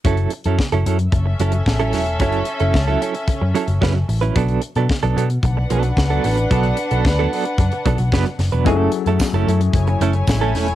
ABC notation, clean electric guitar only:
X:1
M:4/4
L:1/16
Q:1/4=112
K:F#m
V:1 name="Clean electric guitar"
[F,CEA]2 z [F,CEA] z [F,CEA] [F,CEA] z3 [F,CEA] z2 [F,CEA] [F,CEA] z | [F,CEA]2 z [F,CEA] z [F,CEA] [F,CEA] z3 [F,CEA] z [F,CEB] z2 [F,CEB] | [F,B,DA]2 z [F,B,DA] z [F,B,DA] [F,B,DA] z3 [F,B,DA] z2 [F,B,DA] [F,B,DA] z | [F,B,DA]2 z [F,B,DA] z [F,B,DA] [F,B,DA] z3 [F,B,DA] z [F,B,DB] z2 [F,B,DB] |
[A,CEA]2 z [A,CEA] z [A,CEA] [A,CEA] z3 [A,CEA] z2 [A,CEA] [A,CEA] z |]